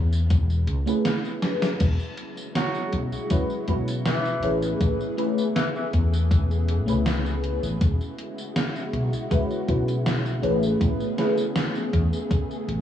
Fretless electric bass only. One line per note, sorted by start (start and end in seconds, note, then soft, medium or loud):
0.00 0.32 E2 loud
0.31 0.67 E1 medium
0.67 0.83 C#2 medium
1.80 1.96 E1 loud
2.93 3.09 B1 loud
3.68 4.37 B1 medium
4.43 4.73 A1 medium
4.81 4.96 A1 loud
5.93 6.32 E2 loud
6.31 6.88 E1 medium
6.88 7.57 C#2 loud
7.63 7.77 A1 medium
7.81 7.97 E1 loud
8.93 9.09 B1 loud
9.68 10.38 B1 medium
10.43 10.74 A1 medium
10.81 10.97 A1 loud
11.93 12.09 E2 loud
12.68 12.81 A1 medium